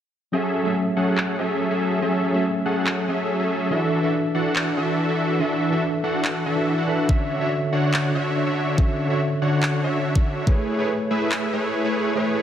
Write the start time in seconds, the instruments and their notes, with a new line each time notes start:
0.32 tine electric piano F#3 C#4 A4 E5, supersaw synth F#3 C#4 G#4 A4 E5
0.63 tine electric piano F#3 A3 C#4, supersaw synth F#3 C#4 G#4 A4 E5
0.67 tine electric piano E5
0.96 supersaw synth F#3 C#4 G#4 A4 F#5
1.18 clap
1.39 supersaw synth F#3 C#4 G#4 A4 E5
1.71 supersaw synth F#3 C#4 G#4 A4 E5
2.01 tine electric piano F#3 C#4 A4 E5, supersaw synth F#3 C#4 G#4 A4 E5
2.32 tine electric piano F#3 A3 C#4 E5, supersaw synth F#3 C#4 G#4 A4 E5
2.65 supersaw synth F#3 C#4 G#4 A4 F#5
2.87 clap
3.08 supersaw synth F#3 C#4 G#4 A4 E5
3.40 supersaw synth F#3 C#4 G#4 A4 E5
3.70 tine electric piano E3 D4 A4 E5, supersaw synth E3 D4 F#4 A4 E5
4.01 tine electric piano E3 D4 A4, supersaw synth E3 D4 F#4 A4 E5
4.05 tine electric piano E5
4.35 supersaw synth E3 D4 F#4 A4 F#5
4.56 clap
4.77 supersaw synth E3 D4 F#4 A4 E5
5.09 supersaw synth E3 D4 F#4 A4 E5
5.39 tine electric piano E3 D4 A4 E5, supersaw synth E3 D4 F#4 A4 E5
5.70 tine electric piano E3 D4 A4, supersaw synth E3 D4 F#4 A4 E5
5.74 tine electric piano E5
6.04 supersaw synth E3 D4 F#4 A4 F#5
6.25 clap
6.46 supersaw synth E3 D4 F#4 A4 E5
6.55 tine electric piano E3 D4 A4 E5
6.78 supersaw synth E3 D4 F#4 A4 F#5
6.87 tine electric piano E3 D4 A4 E5
7.08 tine electric piano D3 C#4 F#4 E5, supersaw synth D3 D4 F#4 C#5 E5, kick
7.39 tine electric piano D3 F#4 C#5, supersaw synth D3 D4 F#4 C#5 E5
7.43 tine electric piano E5
7.73 supersaw synth D3 D4 F#4 C#5 F#5
7.94 clap
8.15 supersaw synth D3 D4 F#4 C#5 E5
8.47 supersaw synth D3 D4 F#4 C#5 E5
8.77 tine electric piano D3 C#4 F#4 E5, supersaw synth D3 D4 F#4 C#5 E5, kick
9.08 tine electric piano D3 F#4 C#5, supersaw synth D3 D4 F#4 C#5 E5
9.12 tine electric piano E5
9.42 supersaw synth D3 D4 F#4 C#5 F#5
9.63 clap
9.84 supersaw synth D3 D4 F#4 C#5 E5
10.15 supersaw synth D3 D4 F#4 C#5 E5, kick
10.46 tine electric piano A3 G#4 B4 C#5, supersaw synth A3 E4 G#4 B4 C#5, kick
10.77 tine electric piano A3 G#4 B4, supersaw synth A3 E4 G#4 B4 C#5
10.81 tine electric piano C#5
11.11 supersaw synth A3 E4 G#4 B4 E5
11.32 clap
11.53 supersaw synth A3 E4 G#4 B4 C#5
11.85 supersaw synth A3 E4 G#4 B4 C#5
12.15 tine electric piano A3 G#4 B4 C#5, supersaw synth A3 E4 G#4 B4 C#5